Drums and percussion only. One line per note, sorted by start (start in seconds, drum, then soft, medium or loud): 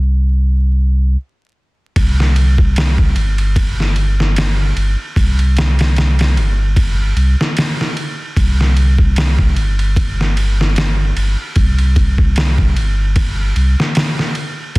1.96 kick loud
1.96 ride medium
2.20 snare soft
2.36 ride medium
2.58 kick medium
2.76 snare loud
2.76 ride medium
2.98 kick loud
3.16 ride medium
3.38 ride soft
3.56 kick loud
3.56 ride medium
3.80 snare soft
3.96 ride medium
4.20 snare medium
4.36 snare loud
4.36 ride medium
4.77 ride medium
5.16 kick loud
5.16 ride medium
5.39 ride soft
5.57 snare loud
5.57 ride medium
5.79 snare loud
5.79 ride medium
5.96 snare loud
5.96 ride medium
6.19 snare loud
6.19 ride medium
6.37 ride medium
6.76 kick loud
6.76 ride medium
7.17 ride medium
7.41 snare medium
7.57 snare loud
7.57 ride medium
7.81 snare medium
7.97 ride medium
8.36 kick loud
8.36 ride medium
8.61 snare soft
8.77 ride medium
8.98 kick medium
9.16 snare loud
9.16 ride medium
9.39 kick loud
9.56 ride medium
9.79 ride soft
9.96 kick loud
9.96 ride medium
10.21 snare soft
10.37 ride medium
10.61 snare medium
10.76 snare loud
10.76 ride medium
11.17 ride medium
11.56 kick loud
11.56 ride medium
11.78 ride soft
11.96 kick medium
11.96 ride medium
12.18 kick medium
12.36 snare loud
12.36 ride medium
12.58 kick medium
12.77 ride medium
13.16 kick loud
13.16 ride medium
13.56 ride medium
13.80 snare medium
13.95 snare loud
13.95 ride medium
14.19 snare medium
14.35 ride medium
14.76 kick loud
14.76 ride medium